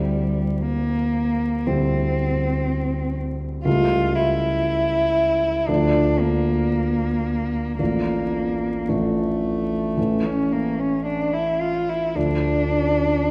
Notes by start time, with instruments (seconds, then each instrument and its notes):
Already playing: grand piano D2 G3 C4 E4, cello G3
0.66 cello A#3
1.67 grand piano D2 G3 C4 E4, cello C4
3.65 grand piano C#2 G3 A3 E4, cello F4
4.16 cello E4
5.69 grand piano D2 F3 A3 D4, cello D4
6.20 cello A#3
7.79 grand piano A1 F3 A3 D4, cello A#3
8.89 grand piano A1 F3 A3 D4, cello A3
9.97 grand piano A1 E3 A3 C#4
10.25 cello C#4
10.52 cello A#3
10.80 cello C#4
11.06 cello D4
11.33 cello E4
11.62 cello F4
11.89 cello E4
12.15 grand piano D2 F3 A3 D4, cello D4